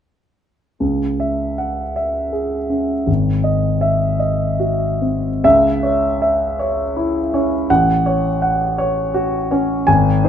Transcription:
0.80 C#2
1.20 E5
1.58 F#5
1.96 E5
2.32 G#4
2.70 C#4
3.07 G#1
3.44 D#5
3.81 E5
4.19 D#5
4.60 F#4
5.02 C4
5.44 C#2 E5
5.83 C#5
6.22 E5
6.59 C#5
6.97 E4
7.34 C#4 C#5
7.70 A1 F#5
8.06 C#5
8.42 F#5
8.78 C#5
9.14 F#4
9.51 C#4 C#5
9.87 G#1 G#5
10.24 D#4 C5

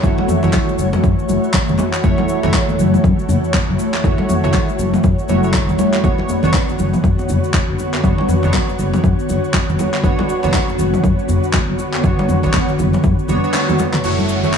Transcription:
Already playing: E3 A3 F#4 C#5
0.03 F#1 A3 E4 F#4 C#5, kick, djembe tone, shaker
0.18 muted conga, djembe slap, high conga
0.28 mid tom, djembe bass, shaker
0.43 F#1 A3 E4 F#4 C#5, djembe slap, muted conga, djembe tone, low conga, shaker
0.53 kick, clap, mid tom, shaker
0.67 muted conga, djembe tone, shaker
0.78 F#1, high conga, shaker
0.93 mid tom, djembe slap, muted conga, djembe tone, shaker
1.04 F#2, kick, shaker
1.19 shaker
1.29 F#1, muted conga, djembe tone, high conga, shaker
1.44 shaker
1.53 kick, clap, muted conga, djembe tone, shaker
1.68 F#1, high conga, low conga, shaker
1.78 djembe slap, muted conga, djembe tone, high conga, shaker
1.93 clap, shaker
2.04 F#1 A3 E4 F#4 C#5, kick, shaker
2.18 djembe slap, muted conga, djembe tone, high conga
2.29 shaker
2.43 F#1 A3 E4 F#4 C#5, djembe slap, muted conga, djembe tone, low conga, shaker
2.54 kick, clap, mid tom, shaker
2.68 muted conga, djembe tone, shaker
2.79 F#1, high conga, low conga, shaker
2.94 mid tom, muted conga, shaker
3.04 F#2, kick, djembe tone, high conga, shaker
3.19 shaker
3.28 F#1, muted conga, high conga, djembe tone, djembe bass, shaker
3.44 shaker
3.54 kick, clap, muted conga, high conga, djembe tone, shaker
3.69 F#1
3.79 muted conga, shaker
3.93 clap, djembe slap, djembe tone, shaker
4.04 F#1 A3 E4 F#4 C#5, kick, shaker
4.18 djembe slap, muted conga, djembe tone, high conga
4.29 mid tom, djembe bass, shaker
4.44 F#1 A3 E4 F#4 C#5, muted conga, djembe slap, djembe tone, low conga, shaker
4.54 kick, clap, mid tom, shaker
4.69 muted conga, shaker
4.79 F#1, djembe tone, high conga, shaker
4.94 mid tom, djembe slap, muted conga, shaker
5.04 F#2, kick, djembe tone, shaker
5.19 shaker
5.29 F#1 A3 E4 F#4 C#5, muted conga, high conga, djembe tone, shaker
5.43 A3 E4 F#4 C#5, shaker
5.54 kick, clap, muted conga, shaker
5.68 E1, high conga, djembe tone, low conga, shaker
5.78 muted conga, djembe slap, high conga, shaker
5.93 clap, djembe tone, shaker
6.04 F#1 D3 B3 D4 F#4 C#5, kick, djembe tone, shaker
6.18 muted conga, djembe slap, high conga
6.29 djembe tone, shaker
6.43 F#1 B3 D4 F#4 C#5, muted conga, djembe slap, low conga, shaker
6.54 kick, clap, mid tom, shaker
6.69 muted conga, djembe tone, shaker
6.79 F#1, high conga, low conga, shaker
6.94 mid tom, muted conga, djembe tone, shaker
7.04 F#2, kick, high conga, shaker
7.19 djembe tone, shaker
7.29 F#1, muted conga, high conga, djembe bass, shaker
7.44 shaker
7.54 kick, clap, muted conga, high conga, djembe tone, shaker
7.69 F#1
7.79 muted conga, djembe tone, shaker
7.94 clap, djembe slap, shaker
8.03 F#1 B3 D4 F#4 C#5, kick, djembe tone, shaker
8.18 muted conga, djembe slap, high conga
8.28 mid tom, djembe bass, shaker
8.43 F#1 B3 D4 F#4 C#5, djembe slap, muted conga, djembe tone, low conga, shaker
8.54 kick, clap, mid tom, shaker
8.68 muted conga, djembe tone, shaker
8.79 F#1, high conga, shaker
8.94 mid tom, djembe slap, muted conga, djembe tone, shaker
9.04 F#2, kick, shaker
9.19 shaker
9.29 F#1, muted conga, djembe tone, high conga, shaker
9.44 shaker
9.54 kick, clap, muted conga, djembe tone, shaker
9.69 F#1, high conga, low conga, shaker
9.79 djembe slap, muted conga, djembe tone, high conga, shaker
9.94 clap, shaker
10.04 F#1 B3 D4 F#4 C#5, kick, shaker
10.19 djembe slap, muted conga, djembe tone, high conga
10.29 shaker
10.43 F#1 B3 D4 F#4 C#5, djembe slap, muted conga, djembe tone, low conga, shaker
10.54 kick, clap, mid tom, shaker
10.68 muted conga, djembe tone, shaker
10.79 F#1, high conga, low conga, shaker
10.94 mid tom, muted conga, shaker
11.04 F#2, kick, high conga, djembe tone, shaker
11.19 shaker
11.29 F#1, muted conga, djembe tone, high conga, djembe bass, shaker
11.44 shaker
11.53 kick, clap, muted conga, djembe tone, high conga, shaker
11.69 F#1
11.79 muted conga, shaker
11.94 clap, djembe slap, djembe tone, shaker
12.04 F#1 B3 D4 F#4 C#5, kick, shaker
12.19 muted conga, djembe slap, high conga, djembe tone, shaker
12.29 mid tom, djembe bass, shaker
12.43 F#1 B3 D4 F#4 C#5, kick, djembe slap, muted conga, djembe tone, low conga, shaker
12.54 kick, clap, mid tom, shaker
12.68 muted conga, shaker
12.79 F#1, djembe tone, high conga, low conga, shaker
12.93 mid tom, muted conga, djembe slap, shaker
13.04 F#2, kick, djembe tone, shaker
13.19 shaker
13.28 F#1 B3 D4 F#4 C#5, muted conga, djembe tone, high conga, low conga, shaker
13.44 B3 D4 F#4 C#5, shaker
13.54 clap, high tom, muted conga, shaker
13.69 high tom, djembe tone, high conga, low conga, shaker
13.79 djembe slap, muted conga, high conga, shaker
13.94 clap, mid tom, djembe tone, shaker
14.04 F#1 E3 A3 C#4 E4 F#4 C#5, crash, downlifter, shaker
14.19 muted conga, high conga, shaker
14.29 shaker
14.43 A3 E4 F#4 C#5, muted conga, low conga, shaker
14.54 clap, shaker

